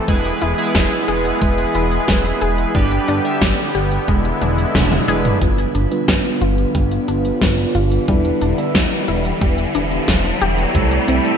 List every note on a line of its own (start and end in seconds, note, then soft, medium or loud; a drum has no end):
0.00 2.71 E3 medium
0.08 0.32 E1 loud
0.08 2.72 G#3 medium
0.08 0.38 G#3 medium
0.08 2.72 B3 medium
0.08 0.54 E4 medium
0.08 0.54 G#4 medium
0.08 2.72 G#4 medium
0.08 0.54 B4 medium
0.08 kick loud
0.08 closed hi-hat medium
0.25 closed hi-hat soft
0.42 0.54 E1 medium
0.42 0.71 E4 medium
0.42 closed hi-hat medium
0.58 2.71 E4 loud
0.58 2.71 G#4 medium
0.58 2.71 B4 loud
0.58 closed hi-hat soft
0.75 0.87 E1 medium
0.75 1.04 G#3 loud
0.75 kick loud
0.75 snare loud
0.75 closed hi-hat medium
0.92 closed hi-hat soft
1.08 1.32 E1 medium
1.08 1.26 G#4 medium
1.08 closed hi-hat medium
1.25 closed hi-hat soft
1.42 1.66 E1 loud
1.42 1.71 G#3 medium
1.42 kick loud
1.42 closed hi-hat medium
1.58 closed hi-hat soft
1.75 1.99 E1 medium
1.75 2.07 E4 medium
1.75 closed hi-hat medium
1.92 closed hi-hat soft
2.08 2.32 E1 medium
2.08 2.40 G#3 medium
2.08 kick loud
2.08 snare loud
2.08 closed hi-hat medium
2.25 closed hi-hat soft
2.41 2.65 E1 loud
2.41 2.71 G#4 medium
2.41 closed hi-hat medium
2.58 closed hi-hat soft
2.75 2.99 G1 loud
2.75 4.07 D3 medium
2.75 4.07 G3 medium
2.75 3.04 G3 medium
2.75 5.39 B3 medium
2.75 3.21 D4 medium
2.75 3.21 G4 medium
2.75 4.07 G4 medium
2.75 3.21 B4 medium
2.75 kick loud
2.75 closed hi-hat medium
2.92 closed hi-hat soft
3.08 3.20 G1 medium
3.08 3.38 D4 medium
3.08 closed hi-hat medium
3.25 3.43 D4 medium
3.25 3.43 G4 medium
3.25 3.43 E5 medium
3.25 closed hi-hat soft
3.42 3.54 G1 medium
3.42 3.71 G3 medium
3.42 kick loud
3.42 snare loud
3.42 closed hi-hat medium
3.58 closed hi-hat soft
3.75 3.99 G1 medium
3.75 4.04 G4 medium
3.75 closed hi-hat medium
3.92 closed hi-hat soft
4.08 4.32 E1 medium
4.08 5.40 D3 medium
4.08 4.40 G#3 loud
4.08 5.40 G#3 medium
4.08 5.40 E4 medium
4.08 kick loud
4.08 closed hi-hat medium
4.25 closed hi-hat soft
4.41 4.65 E1 medium
4.41 4.71 D4 medium
4.41 closed hi-hat medium
4.41 high tom medium
4.58 closed hi-hat soft
4.75 4.99 E1 medium
4.75 4.93 G#3 medium
4.75 4.93 B3 medium
4.75 4.93 D4 medium
4.75 4.93 E4 medium
4.75 4.93 E5 medium
4.75 kick loud
4.75 snare loud
4.75 closed hi-hat medium
4.75 mid tom medium
4.92 closed hi-hat soft
4.92 mid tom medium
5.08 5.32 E1 medium
5.08 5.37 G#3 medium
5.08 5.37 B3 medium
5.08 5.37 D4 medium
5.08 5.37 E4 medium
5.08 5.40 G#4 loud
5.08 5.37 B4 loud
5.08 closed hi-hat medium
5.25 closed hi-hat soft
5.25 mid tom medium
5.41 5.66 G1 loud
5.41 10.71 D3 medium
5.41 5.88 G3 medium
5.41 5.71 G3 medium
5.41 11.38 G3 medium
5.41 5.88 B3 medium
5.41 8.06 B3 medium
5.41 5.88 D4 medium
5.41 5.88 F4 medium
5.41 8.06 F4 medium
5.41 5.88 B4 medium
5.41 kick loud
5.41 closed hi-hat medium
5.41 riser medium
5.58 closed hi-hat soft
5.75 5.87 G1 medium
5.75 6.04 D4 medium
5.75 closed hi-hat medium
5.91 8.04 G3 medium
5.91 8.04 B3 medium
5.91 8.04 D4 medium
5.91 8.04 F4 medium
5.91 8.04 B4 loud
5.91 closed hi-hat soft
6.08 6.20 G1 medium
6.08 6.38 G3 loud
6.08 kick loud
6.08 snare loud
6.08 closed hi-hat medium
6.25 closed hi-hat soft
6.41 6.65 G1 medium
6.41 6.59 F4 medium
6.41 closed hi-hat medium
6.58 closed hi-hat soft
6.75 6.99 G1 medium
6.75 7.04 G3 medium
6.75 kick loud
6.75 closed hi-hat medium
6.92 closed hi-hat soft
7.08 7.32 G1 medium
7.08 7.40 D4 medium
7.08 closed hi-hat loud
7.25 closed hi-hat soft
7.42 7.66 G1 medium
7.42 7.73 G3 medium
7.42 kick loud
7.42 snare loud
7.42 closed hi-hat medium
7.58 closed hi-hat soft
7.75 7.99 G1 loud
7.75 8.04 F4 medium
7.75 closed hi-hat medium
7.92 closed hi-hat soft
8.08 8.32 E1 loud
8.08 8.54 G3 medium
8.08 8.38 G3 medium
8.08 8.54 B3 medium
8.08 10.72 B3 medium
8.08 8.54 D4 medium
8.08 11.38 E4 medium
8.08 8.54 E4 medium
8.08 8.54 B4 loud
8.08 kick loud
8.08 closed hi-hat medium
8.25 closed hi-hat soft
8.41 8.54 E1 medium
8.41 8.71 D4 medium
8.41 closed hi-hat medium
8.58 8.77 G3 medium
8.58 8.77 B3 medium
8.58 8.77 D4 medium
8.58 8.77 E4 medium
8.58 8.77 E5 medium
8.58 closed hi-hat soft
8.75 8.87 E1 medium
8.75 9.04 G3 medium
8.75 kick loud
8.75 snare loud
8.75 closed hi-hat medium
8.92 closed hi-hat soft
9.08 9.32 E1 medium
9.08 9.38 E4 medium
9.08 closed hi-hat medium
9.25 closed hi-hat soft
9.41 9.66 E1 medium
9.41 9.73 G3 loud
9.41 kick loud
9.41 closed hi-hat medium
9.58 closed hi-hat soft
9.75 9.99 E1 medium
9.75 10.04 D4 medium
9.75 closed hi-hat medium
9.92 closed hi-hat soft
10.08 10.32 E1 medium
10.08 10.26 G3 medium
10.08 kick loud
10.08 snare loud
10.08 closed hi-hat medium
10.25 closed hi-hat soft
10.41 10.65 E1 loud
10.41 10.73 G4 loud
10.41 closed hi-hat medium
10.58 closed hi-hat soft
10.75 10.99 C2 loud
10.75 11.38 C3 medium
10.75 11.21 G3 medium
10.75 11.04 G3 medium
10.75 11.21 A3 medium
10.75 11.38 A3 medium
10.75 11.21 C4 medium
10.75 11.21 E4 medium
10.75 11.21 A4 medium
10.75 kick loud
10.75 closed hi-hat medium
10.91 closed hi-hat soft
11.08 11.20 C2 medium
11.08 11.38 C4 medium
11.08 closed hi-hat medium
11.25 11.38 G3 loud
11.25 11.38 A3 medium
11.25 11.38 C4 medium
11.25 11.38 E4 medium
11.25 11.38 A4 loud
11.25 closed hi-hat soft